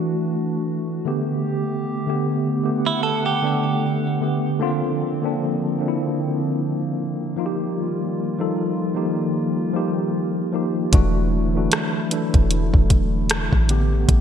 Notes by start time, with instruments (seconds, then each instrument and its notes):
Already playing: analog synth pad E3 A3 D4 F#4, tine electric piano E3 A3 D4 E4 F#4
1.05 tine electric piano D3 A3 B3 G4, analog synth pad D3 B3 G4
2.07 tine electric piano D3 A3 B3 G4
2.63 tine electric piano D3 A3 B3 G4, analog synth pad F#5
2.86 clean electric guitar E4
3.03 clean electric guitar A4
3.26 clean electric guitar G4
3.42 tine electric piano D3 A3 B3 D4
4.20 tine electric piano D3 A3 B3 G4
4.60 tine electric piano D3 A#3 C4 F4, analog synth pad F3 A#3 C4
5.22 tine electric piano D3 A#3 C4 D4
5.79 tine electric piano D3 A#3 C4 D4
5.88 tine electric piano E4
7.37 analog synth pad D#3 G3 F4, tine electric piano F3 A#3 D#4 F4
7.46 tine electric piano G4
8.38 tine electric piano F3 A#3 D#4 A4
8.95 tine electric piano F3 A#3 D#4 G4
9.73 tine electric piano F3 A#3 D#4 G4
10.52 tine electric piano F3 A#3 D#4 G4
10.92 808-style bass E1, analog synth pad D3 F#3 A3 E4, tine electric piano E3 A3 D4 F#4, kick, closed hi-hat
11.54 tine electric piano E3 A3 D4 F#4
11.72 cross-stick, closed hi-hat
12.11 tine electric piano E3 A3 D4 A4, closed hi-hat
12.34 808-style bass E1, kick, closed hi-hat
12.51 closed hi-hat
12.74 808-style bass E1, kick
12.90 kick, closed hi-hat
13.30 cross-stick, closed hi-hat
13.53 808-style bass A1, kick
13.68 tine electric piano D3 A3 B3 G4, analog synth pad B3 G4, closed hi-hat
14.09 808-style bass A1, kick, closed hi-hat